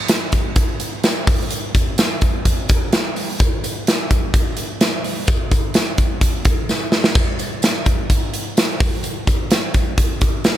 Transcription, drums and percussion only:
0.08 snare, closed hi-hat, tambourine
0.32 kick, closed hi-hat, tambourine
0.56 kick, closed hi-hat
0.80 closed hi-hat, tambourine
1.04 snare, closed hi-hat, tambourine
1.27 kick, open hi-hat, tambourine
1.50 closed hi-hat, tambourine
1.75 kick, closed hi-hat, tambourine
1.98 snare, closed hi-hat, tambourine
2.21 kick, closed hi-hat, tambourine
2.45 kick, closed hi-hat, tambourine
2.68 kick, closed hi-hat, tambourine
2.93 snare, closed hi-hat, tambourine
3.16 open hi-hat, tambourine
3.39 kick, closed hi-hat, tambourine
3.64 closed hi-hat, tambourine
3.87 snare, closed hi-hat, tambourine
4.11 kick, closed hi-hat, tambourine
4.34 kick, closed hi-hat
4.57 closed hi-hat, tambourine
4.81 snare, closed hi-hat, tambourine
5.04 open hi-hat, tambourine
5.27 kick, closed hi-hat, tambourine
5.51 kick, closed hi-hat, tambourine
5.74 snare, closed hi-hat, tambourine
5.98 kick, closed hi-hat, tambourine
6.21 kick, closed hi-hat
6.45 kick, closed hi-hat, tambourine
6.69 snare, tambourine
6.92 snare, tambourine
7.04 snare
7.15 kick, tambourine, splash
7.39 closed hi-hat, tambourine
7.62 snare, closed hi-hat, tambourine
7.86 kick, closed hi-hat, tambourine
8.10 kick, closed hi-hat, tambourine
8.34 closed hi-hat
8.57 snare, closed hi-hat, tambourine
8.80 kick, open hi-hat, tambourine
9.03 closed hi-hat, tambourine
9.27 kick, closed hi-hat, tambourine
9.51 snare, closed hi-hat, tambourine
9.74 kick, closed hi-hat, tambourine
9.98 kick, closed hi-hat
10.21 kick, closed hi-hat
10.44 snare, closed hi-hat, tambourine

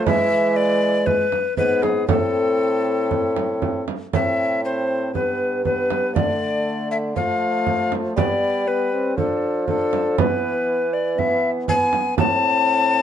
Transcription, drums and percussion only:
0.07 frame drum
1.07 frame drum
1.32 frame drum
1.57 frame drum
1.83 frame drum
2.09 frame drum
3.11 frame drum
3.37 frame drum
3.62 frame drum
3.88 frame drum
4.13 frame drum
5.15 frame drum
5.65 frame drum
5.90 frame drum
6.16 frame drum
7.16 frame drum
7.67 frame drum
7.92 frame drum
8.18 frame drum
9.18 frame drum
9.68 frame drum
9.93 frame drum
10.18 frame drum
11.19 frame drum
11.68 frame drum
11.93 frame drum
12.18 frame drum

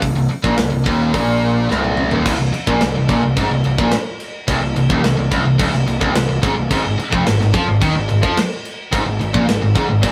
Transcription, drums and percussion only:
0.02 kick, open hi-hat
0.44 kick
0.58 snare, open hi-hat
0.86 kick
1.14 kick, open hi-hat
1.71 snare
1.84 high tom
1.97 mid tom
2.11 floor tom
2.26 kick, crash
2.54 crash
2.67 kick
2.81 snare, crash
3.09 kick, crash
3.37 kick, crash
3.64 crash
3.78 kick
3.92 snare, crash
4.20 crash
4.48 kick, crash
4.76 crash
4.90 kick
5.04 snare, crash
5.31 kick, crash
5.59 kick, crash
5.74 snare
5.87 crash
6.01 kick
6.15 snare, crash
6.43 kick, crash
6.71 kick, crash
6.99 crash
7.12 kick
7.27 snare, crash
7.41 snare
7.54 kick, crash
7.82 kick, crash
8.09 crash
8.23 kick
8.37 snare, crash
8.65 crash
8.93 kick, crash
9.21 crash
9.34 kick
9.49 snare, crash
9.75 kick, crash
10.03 kick, crash

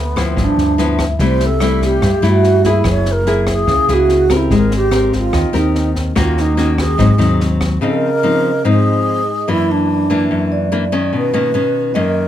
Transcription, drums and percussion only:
0.17 kick, cross-stick, snare
0.37 kick, snare
0.58 snare
0.78 snare
0.99 kick, cross-stick, snare
1.19 kick, snare
1.40 snare
1.60 cross-stick, snare
1.82 kick, snare
2.02 kick, cross-stick, snare
2.23 snare
2.44 snare
2.64 kick, snare
2.84 kick, cross-stick, snare
3.05 snare
3.26 snare
3.47 kick, cross-stick, snare
3.68 kick, snare
3.88 snare
4.09 snare
4.30 kick, cross-stick, snare
4.50 kick, snare
4.71 snare
4.92 cross-stick, snare
5.13 kick, snare
5.33 kick, cross-stick, snare
5.54 snare
5.75 snare
5.96 kick, snare
6.16 kick, cross-stick, snare
6.37 snare
6.58 snare
6.78 kick, cross-stick, snare
6.99 kick, snare
7.20 snare
7.40 snare
7.61 kick, cross-stick, snare

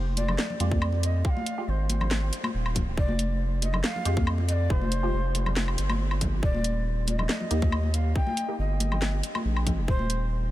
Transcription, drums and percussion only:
0.17 closed hi-hat, muted conga, high conga
0.28 low conga, low woodblock
0.38 snare
0.50 muted conga, low conga
0.60 closed hi-hat
0.71 kick, high conga
0.82 low woodblock
0.92 muted conga
1.03 closed hi-hat
1.25 kick
1.37 high conga
1.46 closed hi-hat
1.89 closed hi-hat, muted conga, high conga
2.01 muted conga, low conga, low woodblock
2.11 snare
2.33 closed hi-hat
2.43 muted conga, high conga, low woodblock
2.66 low woodblock
2.75 kick, closed hi-hat, muted conga, low conga
2.97 kick
3.09 high conga
3.19 closed hi-hat
3.62 closed hi-hat, muted conga, high conga
3.73 low conga, low woodblock
3.84 snare
3.96 muted conga, low conga
4.05 closed hi-hat
4.17 kick, high conga
4.27 low woodblock
4.38 muted conga
4.49 closed hi-hat
4.70 kick
4.81 high conga
4.92 closed hi-hat
5.35 closed hi-hat, muted conga, high conga
5.46 muted conga, low conga, low woodblock
5.56 snare
5.68 low woodblock
5.78 closed hi-hat
5.89 muted conga, high conga, low woodblock
6.11 low woodblock
6.21 kick, closed hi-hat, muted conga, low conga
6.43 kick
6.54 high conga
6.64 closed hi-hat
7.07 closed hi-hat, muted conga, high conga
7.18 low conga, low woodblock
7.29 snare
7.40 muted conga, low conga
7.51 closed hi-hat
7.62 kick, high conga
7.72 low woodblock
7.83 muted conga
7.94 closed hi-hat
8.16 kick
8.27 high conga
8.37 closed hi-hat
8.80 closed hi-hat, muted conga, high conga
8.92 muted conga, low conga, low woodblock
9.02 snare
9.23 closed hi-hat
9.35 muted conga, high conga, low woodblock
9.57 low woodblock
9.67 kick, closed hi-hat, muted conga, low conga
9.88 kick
9.99 high conga
10.10 closed hi-hat

